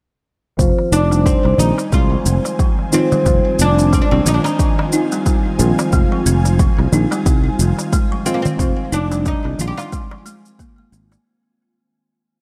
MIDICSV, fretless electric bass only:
0, 0, Header, 1, 2, 480
1, 0, Start_track
1, 0, Key_signature, -4, "minor"
1, 0, Tempo, 666667
1, 429, Time_signature, 4, 2, 24, 8
1, 8936, End_track
2, 0, Start_track
2, 0, Title_t, "Fretless electric bass"
2, 0, Program_c, 0, 35
2, 424, Note_on_c, 0, 29, 83
2, 510, Note_off_c, 0, 29, 0
2, 662, Note_on_c, 0, 29, 83
2, 956, Note_off_c, 0, 29, 0
2, 1043, Note_on_c, 0, 36, 81
2, 1106, Note_off_c, 0, 36, 0
2, 1143, Note_on_c, 0, 34, 89
2, 1229, Note_off_c, 0, 34, 0
2, 1385, Note_on_c, 0, 36, 79
2, 1546, Note_off_c, 0, 36, 0
2, 1625, Note_on_c, 0, 29, 86
2, 1711, Note_off_c, 0, 29, 0
2, 2346, Note_on_c, 0, 29, 87
2, 2431, Note_off_c, 0, 29, 0
2, 2585, Note_on_c, 0, 29, 83
2, 2877, Note_off_c, 0, 29, 0
2, 2964, Note_on_c, 0, 36, 87
2, 3027, Note_off_c, 0, 36, 0
2, 3067, Note_on_c, 0, 34, 94
2, 3151, Note_off_c, 0, 34, 0
2, 4027, Note_on_c, 0, 34, 98
2, 4112, Note_off_c, 0, 34, 0
2, 4266, Note_on_c, 0, 29, 89
2, 4351, Note_off_c, 0, 29, 0
2, 4506, Note_on_c, 0, 29, 91
2, 4798, Note_off_c, 0, 29, 0
2, 4885, Note_on_c, 0, 36, 85
2, 4947, Note_off_c, 0, 36, 0
2, 4986, Note_on_c, 0, 34, 93
2, 5071, Note_off_c, 0, 34, 0
2, 5225, Note_on_c, 0, 36, 81
2, 5386, Note_off_c, 0, 36, 0
2, 5465, Note_on_c, 0, 29, 95
2, 5550, Note_off_c, 0, 29, 0
2, 6185, Note_on_c, 0, 29, 91
2, 6270, Note_off_c, 0, 29, 0
2, 6424, Note_on_c, 0, 29, 92
2, 6717, Note_off_c, 0, 29, 0
2, 6805, Note_on_c, 0, 36, 87
2, 6867, Note_off_c, 0, 36, 0
2, 6906, Note_on_c, 0, 34, 95
2, 6991, Note_off_c, 0, 34, 0
2, 7864, Note_on_c, 0, 32, 80
2, 8026, Note_off_c, 0, 32, 0
2, 8936, End_track
0, 0, End_of_file